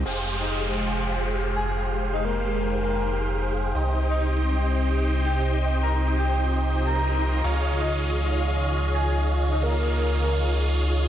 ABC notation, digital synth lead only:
X:1
M:4/4
L:1/16
Q:1/4=130
K:Fm
V:1 name="Digital synth lead"
z3 e z8 z a z2 | z2 e B4- B B3 z4 z | z3 e z8 z g z2 | z2 b z2 g g z4 b4- b |
z3 e z8 z a z2 | z2 e B4- B B3 z4 z |]